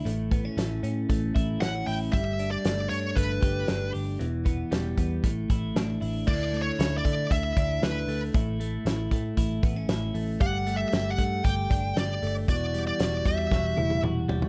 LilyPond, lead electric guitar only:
\new Staff \with { instrumentName = "Lead electric guitar" } { \time 4/4 \key d \major \tempo 4 = 116 r2. fis''8 g''8 | e''8. d''8. cis''8 b'4. r8 | r1 | \tuplet 3/2 { d''4 cis''8~ cis''8 d''4 } e''4 b'8. r16 |
r1 | \tuplet 3/2 { fis''4 e''8~ e''8 fis''4 } g''4 d''8. r16 | d''8. d''8. e''4. r4 | }